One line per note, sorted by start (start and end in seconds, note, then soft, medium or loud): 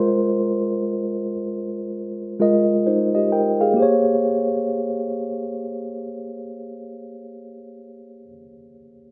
0.00 1.33 G#3 medium
0.00 1.34 F4 medium
0.00 1.34 A#4 medium
0.00 1.35 C5 medium
0.00 2.42 D#5 soft
0.00 3.79 C6 medium
2.40 3.23 G#3 medium
2.40 2.86 F4 medium
2.40 2.86 A#4 medium
2.40 2.87 D#5 medium
2.87 3.13 D#4 soft
2.87 3.13 C5 medium
3.15 3.32 G4 soft
3.15 3.31 D#5 medium
3.32 3.59 A#4 soft
3.32 3.58 G5 medium
3.61 4.04 G#4 soft
3.61 4.03 F5 medium
3.74 8.23 A#3 medium
3.74 8.26 G4 medium
3.80 8.29 C5 medium
3.80 8.32 C#5 medium